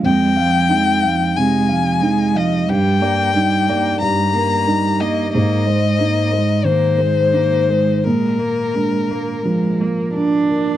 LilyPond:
<<
  \new Staff \with { instrumentName = "Violin" } { \time 4/4 \key f \dorian \tempo 4 = 90 g''2 aes''4. ees''8 | g''2 bes''4. ees''8 | ees''2 c''2 | bes'2. r4 | }
  \new Staff \with { instrumentName = "Felt piano" } { \time 4/4 \key f \dorian f,8 f''8 ees'8 f''8 c8 f''8 ees'8 f''8 | g,8 d''8 ees'8 d''8 g,8 bes'8 ees'8 ees''8 | aes,8 c''8 ees'8 c''8 ees8 c''8 ees'8 c''8 | bes,8 bes'8 d'8 bes'8 f8 bes'8 d'8 bes'8 | }
  \new Staff \with { instrumentName = "Cello" } { \clef bass \time 4/4 \key f \dorian aes8 f8 aes8 f8 aes8 f8 aes8 f8 | g8 bes8 g8 bes8 g8 bes8 g8 bes8 | bes8 aes8 bes8 aes8 bes8 aes8 bes8 aes8 | aes8 bes8 aes8 bes8 aes8 bes8 d'4 | }
>>